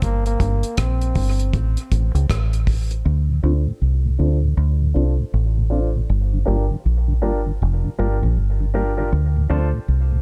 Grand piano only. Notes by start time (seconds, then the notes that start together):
3.43 D4 F4 A4 C5
4.19 D4 F4 A4 C5
4.94 D4 F4 A4 C5
5.70 D4 F4 A4 C5
6.45 D4 F4 G4 A#4
7.22 D4 F4 G4 A#4
7.99 D4 F4 G4 A#4
8.74 D4 F4 G4 A#4
8.97 D4 F4 G4 A#4
9.50 D4 F4 A4 C5